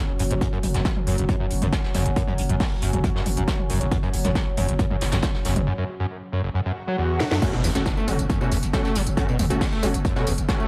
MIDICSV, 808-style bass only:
0, 0, Header, 1, 2, 480
1, 0, Start_track
1, 0, Key_signature, 3, "minor"
1, 0, Tempo, 437956
1, 453, Time_signature, 4, 2, 24, 8
1, 11704, End_track
2, 0, Start_track
2, 0, Title_t, "808-style bass"
2, 0, Program_c, 0, 38
2, 214, Note_on_c, 0, 30, 102
2, 331, Note_off_c, 0, 30, 0
2, 337, Note_on_c, 0, 30, 81
2, 451, Note_off_c, 0, 30, 0
2, 695, Note_on_c, 0, 30, 98
2, 810, Note_off_c, 0, 30, 0
2, 817, Note_on_c, 0, 30, 82
2, 931, Note_off_c, 0, 30, 0
2, 1173, Note_on_c, 0, 30, 103
2, 1290, Note_off_c, 0, 30, 0
2, 1297, Note_on_c, 0, 30, 81
2, 1411, Note_off_c, 0, 30, 0
2, 1654, Note_on_c, 0, 30, 99
2, 1770, Note_off_c, 0, 30, 0
2, 1777, Note_on_c, 0, 30, 84
2, 1891, Note_off_c, 0, 30, 0
2, 2133, Note_on_c, 0, 30, 97
2, 2249, Note_off_c, 0, 30, 0
2, 2255, Note_on_c, 0, 30, 81
2, 2370, Note_off_c, 0, 30, 0
2, 2611, Note_on_c, 0, 30, 97
2, 2728, Note_off_c, 0, 30, 0
2, 2734, Note_on_c, 0, 30, 85
2, 2850, Note_off_c, 0, 30, 0
2, 3093, Note_on_c, 0, 30, 98
2, 3208, Note_off_c, 0, 30, 0
2, 3214, Note_on_c, 0, 30, 84
2, 3330, Note_off_c, 0, 30, 0
2, 3572, Note_on_c, 0, 30, 104
2, 3689, Note_off_c, 0, 30, 0
2, 3695, Note_on_c, 0, 30, 83
2, 3810, Note_off_c, 0, 30, 0
2, 4053, Note_on_c, 0, 30, 99
2, 4168, Note_off_c, 0, 30, 0
2, 4175, Note_on_c, 0, 30, 83
2, 4290, Note_off_c, 0, 30, 0
2, 4531, Note_on_c, 0, 30, 102
2, 4648, Note_off_c, 0, 30, 0
2, 4654, Note_on_c, 0, 30, 80
2, 4770, Note_off_c, 0, 30, 0
2, 5012, Note_on_c, 0, 30, 98
2, 5128, Note_off_c, 0, 30, 0
2, 5134, Note_on_c, 0, 30, 83
2, 5250, Note_off_c, 0, 30, 0
2, 5492, Note_on_c, 0, 30, 97
2, 5609, Note_off_c, 0, 30, 0
2, 5615, Note_on_c, 0, 30, 84
2, 5730, Note_off_c, 0, 30, 0
2, 5972, Note_on_c, 0, 30, 98
2, 6089, Note_off_c, 0, 30, 0
2, 6096, Note_on_c, 0, 30, 81
2, 6210, Note_off_c, 0, 30, 0
2, 8374, Note_on_c, 0, 30, 101
2, 8490, Note_off_c, 0, 30, 0
2, 8497, Note_on_c, 0, 30, 81
2, 8611, Note_off_c, 0, 30, 0
2, 8854, Note_on_c, 0, 30, 97
2, 8969, Note_off_c, 0, 30, 0
2, 8976, Note_on_c, 0, 30, 83
2, 9090, Note_off_c, 0, 30, 0
2, 9333, Note_on_c, 0, 30, 103
2, 9450, Note_off_c, 0, 30, 0
2, 9456, Note_on_c, 0, 30, 84
2, 9571, Note_off_c, 0, 30, 0
2, 9813, Note_on_c, 0, 30, 99
2, 9930, Note_off_c, 0, 30, 0
2, 9937, Note_on_c, 0, 30, 82
2, 10051, Note_off_c, 0, 30, 0
2, 10294, Note_on_c, 0, 30, 99
2, 10410, Note_off_c, 0, 30, 0
2, 10417, Note_on_c, 0, 30, 81
2, 10531, Note_off_c, 0, 30, 0
2, 10775, Note_on_c, 0, 30, 108
2, 10890, Note_off_c, 0, 30, 0
2, 10897, Note_on_c, 0, 30, 82
2, 11011, Note_off_c, 0, 30, 0
2, 11255, Note_on_c, 0, 30, 103
2, 11370, Note_off_c, 0, 30, 0
2, 11376, Note_on_c, 0, 30, 84
2, 11491, Note_off_c, 0, 30, 0
2, 11704, End_track
0, 0, End_of_file